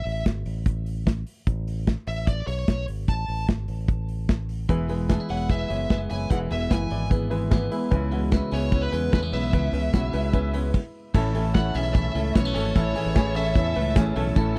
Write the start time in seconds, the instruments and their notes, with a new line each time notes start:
Already playing: lead electric guitar E5
0.05 fingered electric bass A1, open hi-hat
0.26 fingered electric bass G#1, kick, snare, closed hi-hat
0.46 fingered electric bass A1, open hi-hat
0.66 kick, closed hi-hat
0.86 open hi-hat
1.07 kick, snare, closed hi-hat
1.27 open hi-hat
1.47 fingered electric bass A1, kick, closed hi-hat
1.68 open hi-hat
1.87 kick, snare, closed hi-hat
2.07 fingered electric bass A1, lead electric guitar E5, open hi-hat
2.27 lead electric guitar D5, kick, closed hi-hat
2.47 fingered electric bass B1, lead electric guitar C#5, open hi-hat
2.68 fingered electric bass B1, kick, snare, closed hi-hat
2.88 fingered electric bass G#1, open hi-hat
3.08 fingered electric bass A1, lead electric guitar A5, kick, closed hi-hat
3.28 fingered electric bass A1, open hi-hat
3.48 fingered electric bass G#1, kick, snare, closed hi-hat
3.68 fingered electric bass A1, open hi-hat
3.88 kick, closed hi-hat
4.08 open hi-hat
4.29 kick, snare, closed hi-hat
4.49 open hi-hat
4.68 fingered electric bass E1, steel-string acoustic guitar E2 B2 E3 G#3 B3 E4, upright piano E4 G#4 B4, kick, closed hi-hat
4.89 steel-string acoustic guitar E3 G#3 B3 E4, upright piano E4 G#4 B4, open hi-hat
5.09 clean electric guitar D4, upright piano E4 G#4 B4, kick, snare, closed hi-hat
5.20 clean electric guitar E4
5.29 fingered electric bass E1, steel-string acoustic guitar E3 G#3 B3 E4, upright piano E4 G#4 C#5, lead electric guitar F#5, open hi-hat
5.49 clean electric guitar B3, upright piano E4 G#4 B4, lead electric guitar E5, kick, closed hi-hat
5.69 fingered electric bass F#1, steel-string acoustic guitar E3 G#3 B3 E4, upright piano E4 G#4 C#5, open hi-hat
5.90 fingered electric bass F#1, steel-string acoustic guitar E3 G#3 B3 E4, upright piano E4 G#4 B4, lead electric guitar E5, kick, snare, closed hi-hat
6.10 fingered electric bass F#1, steel-string acoustic guitar E3 G#3 B3 E4, upright piano E4 G#4 C#5, lead electric guitar G#5, open hi-hat
6.30 fingered electric bass E1, steel-string acoustic guitar E2 B2 E3 G#3 B3 E4, upright piano E4 G#4 B4, lead electric guitar F#5, kick, closed hi-hat
6.50 fingered electric bass E1, steel-string acoustic guitar E3 G#3 B3 E4, upright piano E4 G#4 B4, lead electric guitar E5, open hi-hat
6.70 fingered electric bass F#1, upright piano E4 G#4 B4, clean electric guitar E4, lead electric guitar G#5, kick, snare, closed hi-hat
6.90 fingered electric bass G#1, steel-string acoustic guitar E3 G#3 B3 E4, upright piano E4 G#4 D5, open hi-hat
7.10 clean electric guitar B3, upright piano E4 G#4 B4, kick, closed hi-hat
7.30 steel-string acoustic guitar E3 G#3 B3 E4, upright piano E4 G#4 B4, open hi-hat
7.50 steel-string acoustic guitar E3 G#3 B3 E4, upright piano E4 G#4 B4, kick, snare, closed hi-hat
7.71 steel-string acoustic guitar E3 G#3 B3 E4, upright piano E4 G#4 B4, open hi-hat
7.91 fingered electric bass C#2, steel-string acoustic guitar C#3 E3 G#3 B3 E4, upright piano C#4 E4 B4, kick, closed hi-hat
8.11 steel-string acoustic guitar B3 E4, upright piano C#4 E4 F#4, open hi-hat
8.15 steel-string acoustic guitar G#3
8.32 upright piano C#4 E4 B4, clean electric guitar E4, kick, snare, closed hi-hat
8.51 fingered electric bass C#2, steel-string acoustic guitar G#3 B3 E4, upright piano C#4 E4 G#4, lead electric guitar C#5, open hi-hat
8.72 clean electric guitar B3, upright piano C#4 E4 C#5, kick, closed hi-hat
8.82 lead electric guitar B4
8.92 fingered electric bass E2, steel-string acoustic guitar G#3 B3 E4, upright piano C#4 E4 B4, open hi-hat
9.12 fingered electric bass E2, steel-string acoustic guitar E3 G#3 B3 E4, clean electric guitar A3, upright piano C#4 E4 B4, lead electric guitar B4, kick, snare, closed hi-hat
9.23 clean electric guitar B3
9.32 fingered electric bass B1, steel-string acoustic guitar G#3 B3 E4, upright piano C#4 E4 B4, lead electric guitar E5, open hi-hat
9.53 fingered electric bass C#2, steel-string acoustic guitar C#3 E3 G#3 B3 E4, upright piano C#4 E4 B4, kick, closed hi-hat
9.73 fingered electric bass C#2, steel-string acoustic guitar G#3 B3 E4, upright piano C#4 E4 B4, open hi-hat
9.93 fingered electric bass B1, upright piano C#4 E4 F#4, clean electric guitar E4, kick, snare, closed hi-hat
10.13 fingered electric bass C#2, steel-string acoustic guitar G#3 B3 E4, upright piano C#4 E4 B4, open hi-hat
10.33 clean electric guitar B3, upright piano C#4 E4 B4, kick, closed hi-hat
10.53 steel-string acoustic guitar G#3 B3 E4, upright piano C#4 E4 B4, open hi-hat
10.74 kick, crash
11.14 fingered electric bass A1, steel-string acoustic guitar A2 E3 A3 C#4 E4, upright piano C#4 E4 A4, string machine C#5 A5 E6, kick, crash
11.34 steel-string acoustic guitar A3 C#4 E4, upright piano C#4 E4 A4, open hi-hat
11.54 steel-string acoustic guitar A2 E3 A3 C#4 E4, upright piano C#4 E4 A4, lead electric guitar F#5, kick, snare, closed hi-hat
11.74 fingered electric bass B1, clean electric guitar C#4, upright piano C#4 E4 G#4, lead electric guitar E5, open hi-hat
11.94 steel-string acoustic guitar E3 A3 C#4 E4, upright piano C#4 E4 A4, lead electric guitar E5, kick, closed hi-hat
12.14 fingered electric bass C#2, steel-string acoustic guitar A3 C#4 E4, upright piano C#4 E4 A4, open hi-hat
12.34 fingered electric bass B1, steel-string acoustic guitar A2 E3 A3 C#4 E4, clean electric guitar B3, upright piano C#4 E4 B4, lead electric guitar C#5, kick, snare, closed hi-hat
12.45 clean electric guitar C#4
12.54 fingered electric bass G#1, steel-string acoustic guitar A3 C#4 E4, upright piano C#4 E4 A4, lead electric guitar C#5, open hi-hat
12.75 fingered electric bass A1, steel-string acoustic guitar A2 E3 A3 C#4 E4, upright piano C#4 E4 A4, kick, closed hi-hat
12.95 steel-string acoustic guitar A3 C#4 E4, upright piano C#4 E4 G#4, open hi-hat
13.06 fingered electric bass A1
13.15 steel-string acoustic guitar A2 E3 A3 C#4 E4, upright piano C#4 E4 G#4, kick, snare, closed hi-hat
13.35 upright piano C#4 E4 A4, clean electric guitar C#4, lead electric guitar E5, open hi-hat
13.55 fingered electric bass E2, steel-string acoustic guitar E3 A3 C#4 E4, upright piano C#4 E4 A4, lead electric guitar E5, kick, closed hi-hat
13.75 fingered electric bass C#2, steel-string acoustic guitar A3 C#4 E4, upright piano C#4 E4 B4, open hi-hat
13.95 fingered electric bass A1, steel-string acoustic guitar A2 E3 A3 C#4 E4, upright piano C#4 E4 G#4, kick, snare, closed hi-hat
14.15 fingered electric bass B1, steel-string acoustic guitar A3 C#4 E4, upright piano C#4 E4 A4, open hi-hat
14.35 fingered electric bass A1, steel-string acoustic guitar A2 E3 A3 C#4 E4, upright piano C#4 E4 A4, kick, closed hi-hat
14.55 upright piano C#4, steel-string acoustic guitar E4